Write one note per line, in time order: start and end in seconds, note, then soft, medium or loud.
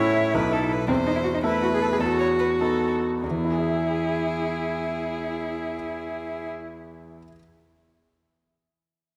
0.00 0.32 A2 medium
0.00 0.30 C#4 soft
0.00 0.30 E4 soft
0.00 0.68 E4 medium
0.00 0.30 A4 soft
0.00 0.35 C#5 medium
0.34 0.87 B1 medium
0.34 0.85 B3 soft
0.34 0.85 D#4 soft
0.34 0.86 A4 soft
0.34 0.54 B4 medium
0.53 0.74 A4 medium
0.72 0.89 B4 medium
0.88 1.42 E2 medium
0.88 0.95 C4 medium
0.88 1.43 C5 medium
1.07 1.10 D#4 medium
1.16 1.19 E4 medium
1.24 1.28 F#4 medium
1.34 1.38 D#4 medium
1.43 1.96 A3 soft
1.43 1.96 E4 soft
1.43 1.62 E4 medium
1.43 1.96 A4 soft
1.43 2.02 B4 medium
1.63 1.66 F#4 medium
1.74 1.81 G#4 medium
1.82 1.85 A4 medium
1.92 1.96 G#4 medium
2.00 2.58 E2 soft
2.00 3.01 F#4 medium
2.00 2.19 A4 soft
2.20 2.28 C#5 soft
2.39 2.47 B4 soft
2.60 3.20 B3 soft
2.60 3.20 D#4 soft
2.60 2.91 A4 soft
2.60 3.20 A4 soft
3.24 7.19 E2 soft
3.24 6.50 E4 soft
3.24 6.50 G#4 soft
3.31 7.23 E3 soft
3.37 7.26 B3 soft
3.45 7.30 E4 soft
3.51 7.33 G#4 soft
3.59 7.37 E5 soft